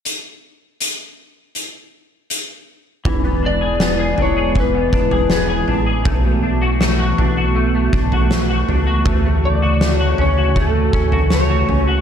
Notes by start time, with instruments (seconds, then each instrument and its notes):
0.05 closed hi-hat
0.81 closed hi-hat
1.55 closed hi-hat
2.30 closed hi-hat
3.05 sub bass E1, clean electric guitar E3, analog synth pad E3 G#3 B3 E4, kick, floor tom
3.24 clean electric guitar B3
3.43 clean electric guitar D4, electric slide guitar D5
3.61 clean electric guitar G#4
3.80 clean electric guitar B3, snare
3.99 clean electric guitar G#4
4.18 sub bass E1, clean electric guitar D4, floor tom
4.22 electric slide guitar C#5
4.37 clean electric guitar G#4
4.55 clean electric guitar E3, kick, floor tom
4.60 electric slide guitar B4
4.74 clean electric guitar B3
4.93 sub bass E1, clean electric guitar D4, kick
5.11 clean electric guitar G#4, floor tom
5.30 clean electric guitar B3, electric slide guitar G#4, snare
5.49 clean electric guitar G#4
5.68 sub bass A1, clean electric guitar D4, floor tom
5.86 clean electric guitar G#4
6.04 sub bass B1, analog synth pad A3 B3 F#4, clean electric guitar A3, kick, floor tom
6.24 clean electric guitar A3
6.43 clean electric guitar D4
6.62 clean electric guitar F#4
6.80 clean electric guitar A3, snare
6.99 clean electric guitar F#4
7.18 sub bass B1, clean electric guitar D4, floor tom
7.37 clean electric guitar F#4
7.55 clean electric guitar A3
7.75 clean electric guitar A3
7.93 sub bass B1, clean electric guitar D4, kick
8.12 clean electric guitar F#4, floor tom
8.31 clean electric guitar A3, snare
8.49 clean electric guitar F#4
8.68 sub bass C#2, clean electric guitar D4, floor tom
8.87 clean electric guitar F#4
9.05 sub bass D2, analog synth pad C#3, clean electric guitar A3, kick, floor tom
9.25 clean electric guitar A3
9.45 electric slide guitar D5
9.62 clean electric guitar F#4
9.81 clean electric guitar A3, snare
9.98 clean electric guitar F#4, electric slide guitar C#5
10.18 sub bass D2, clean electric guitar C#4, electric slide guitar C#5, floor tom
10.38 clean electric guitar F#4
10.56 clean electric guitar A3, kick
10.60 electric slide guitar A4
10.74 clean electric guitar A3
10.93 sub bass D2, clean electric guitar C#4, kick
11.12 clean electric guitar F#4, floor tom
11.30 clean electric guitar A3, electric slide guitar C#5, snare
11.50 clean electric guitar F#4
11.68 sub bass C#2, clean electric guitar C#4, floor tom
11.87 clean electric guitar F#4